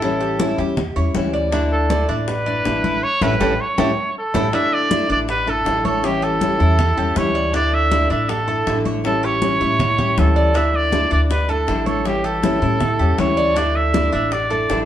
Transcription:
Already playing: A1 E4 A4
0.02 E3 G3 C#4 E4, high bongo, high conga
0.20 G4, high conga
0.39 E3 G3 C#4 E4, high bongo, high conga
0.58 E2 G3 C#4 E4 G4, high bongo, high conga
0.77 muted nylon-string guitar stroke, high bongo, high conga, low conga
0.96 E2 G3 C#4 E4 C#5, high bongo, high conga
1.15 D2 E3 G3 C#4 E4, high bongo, low bongo, high conga
1.34 D5, high bongo, high conga
1.52 D3 A3 D4 E4, high bongo, high conga
1.71 A4, high conga
1.89 D3 A3 D4 E4 D5, high bongo, high conga
2.08 A1 A3 D4 E4, high conga
2.28 B4, muted nylon-string guitar stroke, high bongo, high conga
2.46 A3 D4 E4 D5, high conga
2.65 A1 D3 A3 D4 E4, high bongo, low bongo, high conga
2.84 E4, high conga
3.03 C#5
3.21 A1 A3 C#4 E4 G4 A4 B4, low bongo, high conga
3.40 A1 A3 C#4 E4 G4 A4, low bongo, high conga
3.61 C#5
3.78 A1 A3 C#4 E4 G4 A4, low bongo, high conga
4.18 A4
4.34 A1 A3 C#4 E4 G4 A4, low bongo, high conga
4.52 D3 A3 D4 E4 E5, high bongo, high conga
4.72 D5, high conga
4.90 D3 A3 D4 E4 D5, high bongo, high conga
5.09 A1 A3 D4 E4 D5, high conga
5.28 B4, muted nylon-string guitar stroke, high bongo, high conga
5.46 A3 D4 E4 A4, high conga
5.65 A1 D3 A3 D4 E4, high bongo, low bongo, high conga
5.85 A4 C#5, high conga
6.03 E3 G3 C#4 E4 G4, high bongo, high conga
6.22 G4 A4, high conga
6.40 E3 G3 C#4 E4, high bongo, high conga
6.59 E2 G3 C#4 E4, high bongo, high conga
6.78 muted nylon-string guitar stroke, high bongo, high conga, low conga
6.97 E2 G3 C#4 E4 G4, high bongo, high conga
7.16 D2 E3 G3 C#4 E4 C#5, high bongo, low bongo, high conga
7.35 D5, high bongo, high conga
7.53 D3 A3 D4 E4 D5, high bongo, high conga
7.73 E5, high conga
7.91 D3 A3 D4 E4 D5, high bongo, high conga
8.10 A1 A3 D4 E4 E5, high conga
8.29 A4, muted nylon-string guitar stroke, high bongo, high conga
8.47 A3 D4 E4 A4, high conga
8.66 A1 D3 A3 D4 E4, high bongo, low bongo, high conga
8.85 C#5, high conga
9.04 E3 G3 C#4 E4 A4, high bongo, high conga
9.23 G4 C#5, high conga
9.41 E3 G3 C#4 E4, high bongo, high conga
9.60 A2 G3 C#4 E4, high bongo, high conga
9.79 muted nylon-string guitar stroke, high bongo, high conga, low conga
9.98 G3 C#4 E4 G4, high bongo, high conga, low conga
10.17 D2 E3 G3 C#4 E4 A4, high bongo, low bongo, high conga
10.36 D5, high bongo, high conga
10.54 D3 A3 D4 E4 E5, high bongo, high conga
10.74 D5, high conga
10.92 D3 A3 D4 E4 D5, high bongo, high conga
11.10 D2 A3 D4 E4 D5, high conga
11.30 B4, muted nylon-string guitar stroke, high bongo, high conga
11.48 A3 D4 E4 A4, high conga
11.67 A1 D3 A3 D4 E4, high bongo, low bongo, high conga
11.86 A4 C#5, high conga
12.05 E3 G3 C#4 E4 G4, high bongo, high conga
12.24 G4 A4, high conga
12.42 E3 G3 C#4 E4, high bongo, high conga
12.61 A2 G3 C#4 E4, high bongo, high conga
12.80 muted nylon-string guitar stroke, high bongo, high conga, low conga
12.99 E2 G3 C#4 E4 G4, high bongo, high conga
13.18 D2 E3 G3 C#4 E4 C#5, high bongo, low bongo, high conga
13.37 D5, high bongo, high conga
13.56 D3 A3 D4 E4 D5, high bongo, high conga
13.75 E5, high conga
13.93 D3 A3 D4 E4 D5, high bongo, high conga
14.12 A1 A3 D4 E4 E5, high conga
14.31 D5, muted nylon-string guitar stroke, high bongo, high conga
14.50 A3 D4 E4 A4, high conga
14.69 A1 D3 A3 D4 E4, high bongo, low bongo, high conga

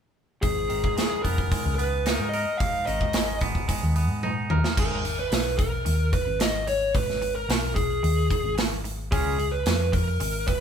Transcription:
0.42 G#1 G#2 G#4, kick, open hi-hat
0.69 G#1 D#3, open hi-hat
0.84 kick
0.97 G#3, snare, open hi-hat
1.23 F1 B3 A#4, kick, open hi-hat
1.38 kick
1.52 G#3, kick, open hi-hat
1.65 C#2
1.75 B3 B4, open hi-hat
2.06 D#4, snare, open hi-hat
2.13 A#4
2.19 G#2
2.29 D#5
2.33 A#4, open hi-hat
2.58 G#2 F5, kick, open hi-hat
2.86 G#1 D#3 D#5, open hi-hat
3.01 kick
3.13 G#3, snare, open hi-hat
3.41 G#1 B3, kick, open hi-hat
3.55 kick
3.68 G#3, kick, open hi-hat
3.83 D#2
3.96 B3, open hi-hat
4.10 G#2
4.23 D#4, high tom
4.50 D#2 A#4, mid tom
4.64 snare
4.77 G#1 G#2 D#3 G#3 A#4, kick, crash
4.91 G#1
5.05 G#2 D#3, open hi-hat
5.20 B4
5.32 B1 G#2 D#3, snare, open hi-hat
5.58 G#2 D#3 A#4, kick, open hi-hat
5.85 D#2 G#2 D#3, open hi-hat
6.12 G#2 D#3 B4, kick, open hi-hat
6.27 G#1
6.40 G#2 D#3 D#5, snare, open hi-hat
6.67 G#2 D#3 C#5, open hi-hat
6.95 G#1 G#2 D#3 B4, kick, open hi-hat
7.08 G#1, snare
7.22 G#2 D#3, open hi-hat
7.35 A#4
7.49 B1 G#2 D#3, snare, open hi-hat
7.75 G#2 D#3 G#4, kick, open hi-hat
8.03 D#2 G#2 D#3, open hi-hat
8.31 G#2 D#3, kick, open hi-hat
8.44 G#1
8.58 G#2 D#3, snare, open hi-hat
8.84 G#2 D#3, open hi-hat
9.11 C#2 C#3 G#3 C#4 G#4, kick, open hi-hat
9.26 C#2
9.39 C#3 G#3, open hi-hat
9.52 B4
9.66 F2 C#3 G#3, snare, open hi-hat
9.92 C#3 G#3 A#4, kick, open hi-hat
10.20 G#1 C#3 G#3, open hi-hat
10.47 C#3 G#3 B4, kick, open hi-hat

